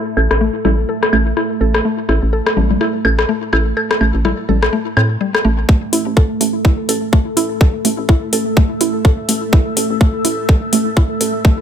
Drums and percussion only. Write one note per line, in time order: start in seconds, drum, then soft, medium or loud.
0.17 claves soft
0.31 cross-stick medium
0.65 cross-stick soft
0.65 low conga medium
1.03 cross-stick medium
1.13 claves medium
1.37 cross-stick soft
1.74 cross-stick medium
2.09 cross-stick soft
2.47 cross-stick medium
2.57 low conga medium
2.71 low conga medium
2.81 cross-stick soft
3.05 claves medium
3.19 cross-stick medium
3.53 cross-stick soft
3.53 claves soft
3.77 claves soft
3.91 cross-stick medium
4.01 claves soft
4.25 cross-stick soft
4.25 low conga medium
4.49 low conga medium
4.63 cross-stick medium
4.97 cross-stick soft
4.97 claves medium
5.35 cross-stick medium
5.35 claves soft
5.69 kick loud
5.93 open hi-hat medium
6.17 kick loud
6.41 open hi-hat medium
6.65 kick loud
6.89 open hi-hat medium
7.13 kick loud
7.37 open hi-hat medium
7.61 kick loud
7.85 open hi-hat medium
8.09 kick loud
8.33 open hi-hat medium
8.57 kick loud
8.81 open hi-hat medium
9.05 kick loud
9.29 open hi-hat medium
9.53 kick loud
9.77 open hi-hat medium
10.01 kick loud
10.25 open hi-hat medium
10.49 kick loud
10.73 open hi-hat medium
10.97 kick loud
11.21 open hi-hat medium
11.45 kick loud